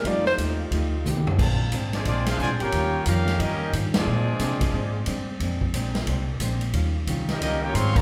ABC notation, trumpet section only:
X:1
M:4/4
L:1/8
Q:"Swing" 1/4=179
K:Fmix
V:1 name="Trumpet section"
z8 | [K:Bb] z3 [CF_Ad] [CFAd] [DAcf] [Fcd_a] [FB_dg]- | [FB_dg]2 [_DGBf]2 [DGBe]2 z [CF_A=d]- | [CF_Ad]6- [CFAd] z |
z8 | z3 [_DGBe] [DGBe] [FB_dg] [_Adfc'] [A=dfb] |]